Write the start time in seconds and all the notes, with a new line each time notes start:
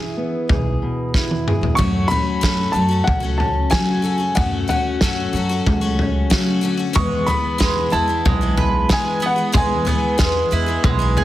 Already playing: E3 E4 G#4 E5
0.17 B3
0.49 B1 G#4, kick, floor tom
0.82 B2
1.14 E2 E4, kick, snare
1.31 high tom
1.48 G#4, mid tom
1.61 E2, floor tom
1.75 F#2 F#3 A3 C#4 F#4 C#6, kick, floor tom
1.81 A3
2.08 F#3 A3 C#4 B5, floor tom
2.12 C#4 F#4
2.41 F#2 F#3 A3 C#4 F#4 A4, kick, snare
2.72 F#2 F#3 A3 C#4 F#4 A5
2.77 F#3
2.89 A3 C#4 F#4
3.04 C#2 F#5, kick, floor tom
3.20 A3 C#4 F#4
3.38 C#4 A5, floor tom
3.70 C#3 F#3 A3 C#4 F#4 G#5, kick, snare
4.02 F#3 A3 C#4 F#4 A4
4.18 A3 C#4 F#4
4.35 F#2 F#3 A3 C#4 F#4 F#5, kick, floor tom
4.68 F#3 A3 C#4 F#4 F#5, floor tom
5.01 F#2 F#3 A3 C#4 F#4 A4, kick, snare
5.33 F#2 F#3 A3 C#4
5.37 F#4
5.49 A3 C#4 F#4
5.66 C#2, kick, floor tom
5.81 A3 C#4 F#4
5.99 C#4, floor tom
6.30 C#3 F#3 A3 C#4 F#4, kick, snare
6.61 D3 F#3 A3 C#4 F#4
6.77 A3 C#4 F#4
6.93 E2 B2 E3 G#3 B3 G#4 C#6, kick, floor tom
7.26 E3 G#3 B3 G#4 B5, floor tom
7.58 E2 B2 E3 G#3 B3 G#4, kick, snare
7.90 E2 E3 G#3 B3 E4 G#4 A5
8.08 E3 G#3 B3
8.25 B1 G#3, kick, floor tom
8.41 E3 G#3 B3
8.57 B4, floor tom
8.89 E2 B2 E3 G#3 B3 G#4 G#5, kick, snare
9.20 E3 G#3 B3 G#4
9.26 F#5
9.36 E3 G#3 B3 G#4
9.52 E2 B2 E3 G#3 B3 G#4 G#5, kick, floor tom
9.85 E3 G#3 B3 G#4, floor tom
10.18 E2 B2 E3 G#3 B3 G#4, kick, snare
10.51 E2 E3 G#3 B3 E4 G#4
10.66 E3 G#3 B3 G#4
10.84 B1 G#3, kick, floor tom
10.99 E3 G#3 B3 G#4
11.16 D2 G#4, floor tom